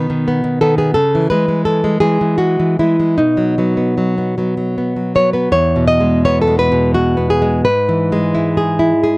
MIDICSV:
0, 0, Header, 1, 2, 480
1, 0, Start_track
1, 0, Key_signature, 4, "major"
1, 0, Tempo, 687285
1, 664, Time_signature, 3, 2, 24, 8
1, 1156, Tempo, 746269
1, 1636, Tempo, 800000
1, 2596, Tempo, 770218
1, 3556, Tempo, 713436
1, 4516, Tempo, 688073
1, 6056, End_track
2, 0, Start_track
2, 0, Title_t, "Nylon-string guitar"
2, 0, Program_c, 0, 24
2, 0, Note_on_c, 0, 47, 77
2, 0, Note_on_c, 0, 59, 60
2, 0, Note_on_c, 0, 71, 90
2, 68, Note_on_c, 0, 51, 55
2, 185, Note_off_c, 0, 59, 0
2, 193, Note_on_c, 0, 59, 59
2, 297, Note_off_c, 0, 51, 0
2, 306, Note_on_c, 0, 51, 55
2, 395, Note_off_c, 0, 71, 0
2, 422, Note_off_c, 0, 51, 0
2, 423, Note_off_c, 0, 59, 0
2, 427, Note_on_c, 0, 69, 83
2, 430, Note_on_c, 0, 51, 53
2, 432, Note_on_c, 0, 59, 57
2, 537, Note_off_c, 0, 59, 0
2, 543, Note_off_c, 0, 69, 0
2, 545, Note_on_c, 0, 59, 55
2, 546, Note_on_c, 0, 68, 67
2, 634, Note_off_c, 0, 47, 0
2, 642, Note_off_c, 0, 51, 0
2, 656, Note_off_c, 0, 68, 0
2, 658, Note_on_c, 0, 69, 91
2, 664, Note_off_c, 0, 59, 0
2, 666, Note_on_c, 0, 49, 71
2, 802, Note_on_c, 0, 52, 55
2, 894, Note_off_c, 0, 69, 0
2, 907, Note_off_c, 0, 52, 0
2, 908, Note_on_c, 0, 71, 81
2, 912, Note_off_c, 0, 49, 0
2, 915, Note_on_c, 0, 52, 53
2, 919, Note_on_c, 0, 56, 56
2, 1028, Note_off_c, 0, 56, 0
2, 1036, Note_on_c, 0, 56, 50
2, 1146, Note_off_c, 0, 71, 0
2, 1154, Note_off_c, 0, 52, 0
2, 1154, Note_on_c, 0, 69, 76
2, 1162, Note_on_c, 0, 52, 52
2, 1267, Note_off_c, 0, 56, 0
2, 1275, Note_on_c, 0, 56, 54
2, 1375, Note_off_c, 0, 52, 0
2, 1377, Note_off_c, 0, 69, 0
2, 1379, Note_off_c, 0, 56, 0
2, 1380, Note_on_c, 0, 68, 74
2, 1383, Note_on_c, 0, 52, 48
2, 1387, Note_on_c, 0, 56, 53
2, 1506, Note_off_c, 0, 52, 0
2, 1513, Note_on_c, 0, 52, 50
2, 1618, Note_off_c, 0, 56, 0
2, 1619, Note_off_c, 0, 68, 0
2, 1621, Note_on_c, 0, 66, 74
2, 1626, Note_on_c, 0, 56, 52
2, 1746, Note_off_c, 0, 52, 0
2, 1753, Note_on_c, 0, 52, 47
2, 1853, Note_off_c, 0, 66, 0
2, 1864, Note_off_c, 0, 52, 0
2, 1867, Note_off_c, 0, 56, 0
2, 1871, Note_on_c, 0, 52, 42
2, 1871, Note_on_c, 0, 64, 66
2, 1874, Note_on_c, 0, 56, 46
2, 1985, Note_off_c, 0, 56, 0
2, 1992, Note_on_c, 0, 56, 46
2, 2088, Note_off_c, 0, 52, 0
2, 2101, Note_on_c, 0, 63, 65
2, 2102, Note_off_c, 0, 64, 0
2, 2108, Note_on_c, 0, 47, 57
2, 2113, Note_off_c, 0, 56, 0
2, 2219, Note_on_c, 0, 54, 44
2, 2338, Note_off_c, 0, 54, 0
2, 2344, Note_on_c, 0, 54, 43
2, 2348, Note_on_c, 0, 59, 45
2, 2450, Note_off_c, 0, 59, 0
2, 2457, Note_on_c, 0, 59, 40
2, 2573, Note_off_c, 0, 54, 0
2, 2581, Note_on_c, 0, 54, 46
2, 2699, Note_off_c, 0, 59, 0
2, 2707, Note_on_c, 0, 59, 42
2, 2823, Note_off_c, 0, 54, 0
2, 2828, Note_off_c, 0, 59, 0
2, 2830, Note_on_c, 0, 54, 44
2, 2836, Note_on_c, 0, 59, 45
2, 2945, Note_off_c, 0, 54, 0
2, 2952, Note_on_c, 0, 54, 44
2, 3051, Note_off_c, 0, 63, 0
2, 3073, Note_off_c, 0, 59, 0
2, 3080, Note_on_c, 0, 59, 43
2, 3188, Note_off_c, 0, 54, 0
2, 3196, Note_on_c, 0, 54, 40
2, 3306, Note_off_c, 0, 54, 0
2, 3309, Note_off_c, 0, 59, 0
2, 3313, Note_on_c, 0, 54, 40
2, 3316, Note_on_c, 0, 59, 42
2, 3316, Note_on_c, 0, 73, 72
2, 3423, Note_off_c, 0, 73, 0
2, 3424, Note_off_c, 0, 59, 0
2, 3426, Note_on_c, 0, 71, 54
2, 3431, Note_on_c, 0, 59, 43
2, 3527, Note_off_c, 0, 54, 0
2, 3528, Note_off_c, 0, 47, 0
2, 3541, Note_off_c, 0, 71, 0
2, 3541, Note_on_c, 0, 40, 73
2, 3543, Note_on_c, 0, 73, 89
2, 3550, Note_off_c, 0, 59, 0
2, 3703, Note_on_c, 0, 47, 55
2, 3778, Note_off_c, 0, 73, 0
2, 3781, Note_on_c, 0, 75, 95
2, 3867, Note_on_c, 0, 56, 57
2, 4020, Note_off_c, 0, 75, 0
2, 4032, Note_on_c, 0, 59, 59
2, 4033, Note_on_c, 0, 73, 96
2, 4141, Note_off_c, 0, 73, 0
2, 4143, Note_on_c, 0, 69, 81
2, 4175, Note_off_c, 0, 56, 0
2, 4184, Note_on_c, 0, 56, 56
2, 4258, Note_off_c, 0, 69, 0
2, 4260, Note_on_c, 0, 71, 94
2, 4340, Note_off_c, 0, 47, 0
2, 4348, Note_on_c, 0, 47, 58
2, 4495, Note_off_c, 0, 56, 0
2, 4497, Note_off_c, 0, 71, 0
2, 4500, Note_on_c, 0, 66, 86
2, 4503, Note_on_c, 0, 56, 61
2, 4649, Note_off_c, 0, 59, 0
2, 4657, Note_on_c, 0, 59, 55
2, 4742, Note_off_c, 0, 66, 0
2, 4748, Note_on_c, 0, 68, 74
2, 4822, Note_off_c, 0, 56, 0
2, 4831, Note_on_c, 0, 56, 61
2, 4966, Note_off_c, 0, 40, 0
2, 4986, Note_off_c, 0, 68, 0
2, 4989, Note_on_c, 0, 71, 90
2, 4991, Note_off_c, 0, 59, 0
2, 4993, Note_on_c, 0, 44, 75
2, 4997, Note_off_c, 0, 47, 0
2, 4997, Note_off_c, 0, 56, 0
2, 5157, Note_on_c, 0, 52, 61
2, 5321, Note_on_c, 0, 56, 64
2, 5476, Note_on_c, 0, 64, 61
2, 5632, Note_off_c, 0, 71, 0
2, 5635, Note_on_c, 0, 68, 66
2, 5780, Note_off_c, 0, 64, 0
2, 5789, Note_on_c, 0, 64, 64
2, 5876, Note_off_c, 0, 52, 0
2, 5949, Note_off_c, 0, 68, 0
2, 5958, Note_on_c, 0, 68, 72
2, 6035, Note_off_c, 0, 56, 0
2, 6056, Note_off_c, 0, 44, 0
2, 6056, Note_off_c, 0, 64, 0
2, 6056, Note_off_c, 0, 68, 0
2, 6056, End_track
0, 0, End_of_file